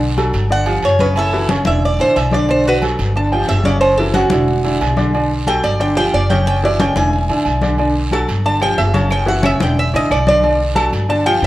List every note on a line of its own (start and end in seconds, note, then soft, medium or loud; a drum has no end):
0.00 0.28 B1 medium
0.00 0.11 D3 medium
0.00 0.11 D4 medium
0.00 0.12 D5 medium
0.00 high conga soft
0.17 0.45 F#3 medium
0.17 0.45 F#4 medium
0.17 0.45 A4 medium
0.17 high conga medium
0.17 low agogo loud
0.17 short guiro medium
0.33 0.80 G1 loud
0.33 low agogo medium
0.33 short guiro medium
0.50 0.64 D3 medium
0.50 0.64 D4 medium
0.50 0.64 D5 medium
0.50 0.83 F#5 loud
0.50 high conga soft
0.50 long guiro medium
0.66 0.94 F3 medium
0.66 0.94 F4 medium
0.66 0.94 G4 medium
0.66 high conga soft
0.66 low agogo loud
0.83 1.60 F#1 medium
0.83 1.00 C#5 medium
0.83 high conga soft
0.83 low agogo medium
0.83 short guiro medium
0.99 1.27 C#3 medium
0.99 1.27 C#4 loud
0.99 1.16 B4 medium
0.99 1.28 C#5 medium
0.99 high conga medium
0.99 short guiro medium
1.16 1.48 E4 medium
1.16 1.50 A4 medium
1.16 high conga soft
1.16 low agogo loud
1.16 long guiro medium
1.31 1.47 E3 medium
1.31 1.47 E4 medium
1.31 1.47 F#4 medium
1.31 high conga soft
1.49 1.63 C#3 medium
1.49 1.64 C#4 medium
1.49 1.64 C#5 medium
1.49 high conga loud
1.49 low agogo medium
1.49 short guiro medium
1.65 1.97 E1 medium
1.65 1.93 D3 medium
1.65 1.93 D4 medium
1.65 1.93 E4 medium
1.65 1.83 E5 medium
1.65 high conga loud
1.65 low agogo medium
1.65 short guiro medium
1.82 2.00 D5 medium
1.82 high conga soft
1.82 long guiro medium
1.98 2.15 A1 medium
1.98 2.27 D3 medium
1.98 2.27 D4 medium
1.98 2.27 E4 medium
1.98 2.16 C5 loud
1.98 high conga soft
1.98 low agogo medium
2.15 2.93 B1 medium
2.15 2.32 E5 medium
2.15 high conga soft
2.15 low agogo loud
2.15 short guiro medium
2.31 2.46 D3 medium
2.31 2.46 D4 medium
2.31 2.46 D5 medium
2.31 2.49 D5 medium
2.31 high conga medium
2.31 short guiro medium
2.49 2.76 D3 medium
2.49 2.76 D4 medium
2.49 2.66 C5 medium
2.49 2.76 D5 medium
2.49 low agogo medium
2.49 long guiro medium
2.65 2.82 F#4 medium
2.65 2.83 B4 medium
2.65 high conga soft
2.82 3.10 F#3 medium
2.82 3.10 F#4 medium
2.82 3.10 A4 medium
2.82 high conga medium
2.82 low agogo loud
2.82 short guiro medium
2.99 3.45 G1 medium
2.99 low agogo medium
2.99 short guiro medium
3.14 3.29 D3 medium
3.14 3.29 D4 medium
3.14 3.29 D5 medium
3.14 3.32 A5 loud
3.14 high conga soft
3.14 long guiro medium
3.31 3.60 F3 medium
3.31 3.59 F4 medium
3.31 3.60 G4 medium
3.31 3.48 G5 medium
3.31 high conga soft
3.31 low agogo loud
3.48 4.26 F#1 medium
3.48 3.65 E5 loud
3.48 high conga soft
3.48 low timbale medium
3.48 low agogo medium
3.48 short guiro medium
3.64 3.92 C#3 medium
3.64 3.92 C#4 loud
3.64 3.92 C#5 medium
3.64 3.80 D5 medium
3.64 high conga medium
3.64 short guiro medium
3.81 3.97 C5 medium
3.81 high conga soft
3.81 low agogo loud
3.81 long guiro medium
3.97 4.12 E3 medium
3.97 4.12 E4 medium
3.97 4.12 F#4 medium
3.97 4.14 A4 medium
3.97 high conga soft
4.14 4.28 C#3 medium
4.14 4.29 C#4 medium
4.14 4.79 F#4 loud
4.14 4.29 C#5 medium
4.14 high conga loud
4.14 low agogo medium
4.14 short guiro medium
4.30 4.77 E1 medium
4.30 4.59 D3 medium
4.30 4.59 D4 medium
4.30 4.59 E4 medium
4.30 high conga loud
4.30 low agogo medium
4.30 short guiro medium
4.48 high conga soft
4.48 long guiro medium
4.64 4.91 D3 medium
4.64 4.91 D4 medium
4.64 4.91 E4 medium
4.64 high conga soft
4.64 low agogo medium
4.80 5.58 B1 medium
4.80 high conga soft
4.80 low timbale medium
4.80 low agogo loud
4.80 short guiro medium
4.97 5.10 D3 loud
4.97 5.11 D4 medium
4.97 5.11 D5 loud
4.97 high conga medium
4.97 short guiro medium
5.13 5.41 D3 medium
5.13 5.41 D4 medium
5.13 5.41 D5 medium
5.13 high conga soft
5.13 low agogo medium
5.13 long guiro medium
5.30 high conga soft
5.47 5.74 F#3 medium
5.47 5.74 F#4 medium
5.47 5.74 A4 medium
5.47 5.63 G5 loud
5.47 high conga medium
5.47 low agogo loud
5.47 short guiro medium
5.64 6.10 G1 medium
5.64 5.80 D5 medium
5.64 low agogo medium
5.64 short guiro medium
5.80 5.93 D3 medium
5.80 5.93 D4 medium
5.80 5.94 D5 medium
5.80 5.96 G5 medium
5.80 high conga soft
5.80 long guiro medium
5.96 6.23 F3 medium
5.96 6.24 F4 medium
5.96 6.24 G4 medium
5.96 6.13 G5 loud
5.96 high conga soft
5.96 low agogo loud
6.13 6.90 F#1 medium
6.13 6.30 D5 medium
6.13 high conga soft
6.13 low agogo medium
6.13 short guiro medium
6.29 6.57 C#3 medium
6.29 6.57 C#4 loud
6.29 6.57 C#5 medium
6.29 6.46 G5 medium
6.29 high conga medium
6.29 short guiro medium
6.46 6.62 G5 loud
6.46 high conga soft
6.46 low agogo loud
6.46 long guiro medium
6.62 6.76 E3 medium
6.62 6.77 E4 medium
6.62 6.77 F#4 medium
6.62 6.80 D5 medium
6.62 high conga soft
6.78 6.93 C#3 medium
6.78 6.93 C#4 medium
6.78 6.93 C#5 medium
6.78 6.96 G5 medium
6.78 high conga loud
6.78 low agogo medium
6.78 short guiro medium
6.95 7.26 E1 medium
6.95 7.23 D3 medium
6.95 7.24 D4 medium
6.95 7.24 E4 medium
6.95 7.60 G#5 medium
6.95 high conga loud
6.95 low agogo medium
6.95 short guiro medium
7.12 high conga soft
7.12 long guiro medium
7.29 7.44 A1 medium
7.29 7.56 D3 medium
7.29 7.57 D4 medium
7.29 7.57 E4 medium
7.29 high conga soft
7.29 low agogo medium
7.45 8.22 B1 medium
7.45 high conga soft
7.45 low agogo loud
7.45 short guiro medium
7.61 7.75 D3 loud
7.61 7.76 D4 medium
7.61 7.76 D5 medium
7.61 high conga medium
7.61 short guiro medium
7.78 8.05 D3 medium
7.78 8.06 D4 medium
7.78 8.06 D5 medium
7.78 high conga soft
7.78 low agogo medium
7.78 long guiro medium
7.94 high conga soft
8.11 8.39 F#3 medium
8.11 8.39 F#4 medium
8.11 8.39 A4 medium
8.11 8.28 A5 medium
8.11 high conga medium
8.11 low agogo loud
8.11 short guiro medium
8.11 claves medium
8.28 8.74 G1 medium
8.28 low agogo medium
8.28 short guiro medium
8.44 8.59 D3 medium
8.44 8.59 D4 medium
8.44 8.59 D5 medium
8.44 8.61 A5 medium
8.44 high conga soft
8.44 long guiro medium
8.61 8.88 F3 medium
8.61 8.88 F4 medium
8.61 8.89 G4 medium
8.61 8.78 G5 loud
8.61 high conga soft
8.61 low agogo loud
8.61 claves medium
8.78 9.55 F#1 medium
8.78 8.94 E5 medium
8.78 high conga soft
8.78 low timbale medium
8.78 low agogo medium
8.78 short guiro medium
8.94 9.21 C#3 loud
8.94 9.21 C#4 loud
8.94 9.21 C#5 medium
8.94 9.10 A5 medium
8.94 high conga medium
8.94 short guiro medium
9.10 9.28 G5 medium
9.10 high conga soft
9.10 low agogo loud
9.10 long guiro medium
9.10 claves medium
9.26 9.40 E3 medium
9.26 9.40 E4 medium
9.26 9.41 F#4 medium
9.26 9.44 F#5 medium
9.26 high conga soft
9.42 9.57 C#3 medium
9.42 9.57 C#4 medium
9.42 9.57 C#5 medium
9.42 9.61 E5 medium
9.42 high conga medium
9.42 low agogo loud
9.42 short guiro medium
9.42 claves medium
9.60 9.91 E1 medium
9.60 9.87 D3 medium
9.60 9.87 D4 medium
9.60 9.88 E4 medium
9.60 9.78 G5 medium
9.60 high conga loud
9.60 low agogo medium
9.60 short guiro medium
9.77 9.94 E5 medium
9.77 high conga soft
9.77 long guiro medium
9.93 10.09 A1 medium
9.93 10.21 D3 medium
9.93 10.21 D4 medium
9.93 10.21 E4 medium
9.93 10.11 D#5 loud
9.93 high conga soft
9.93 low agogo medium
10.09 10.88 B1 medium
10.09 10.27 D5 medium
10.09 high conga soft
10.09 low agogo loud
10.09 short guiro medium
10.09 claves medium
10.26 10.40 D3 medium
10.26 10.40 D4 loud
10.26 10.40 D5 medium
10.26 10.60 D5 loud
10.26 high conga loud
10.26 short guiro medium
10.43 10.71 D3 medium
10.43 10.70 D4 medium
10.43 10.71 D5 medium
10.43 high conga soft
10.43 low agogo medium
10.43 long guiro medium
10.59 high conga soft
10.75 11.03 F#3 medium
10.75 11.03 F#4 medium
10.75 11.03 A4 medium
10.75 10.92 A5 loud
10.75 high conga medium
10.75 low agogo loud
10.75 short guiro medium
10.75 claves medium
10.93 11.39 G1 medium
10.93 low agogo medium
10.93 short guiro medium
11.09 11.23 D3 medium
11.09 11.23 D4 medium
11.09 11.23 D5 medium
11.09 11.26 A5 medium
11.09 high conga soft
11.09 long guiro medium
11.25 11.47 F3 medium
11.25 11.47 F4 medium
11.25 11.47 G4 medium
11.25 11.42 G5 loud
11.25 high conga soft
11.25 low agogo loud
11.25 claves medium
11.42 11.47 F#1 medium
11.42 high conga soft
11.42 low agogo medium
11.42 short guiro medium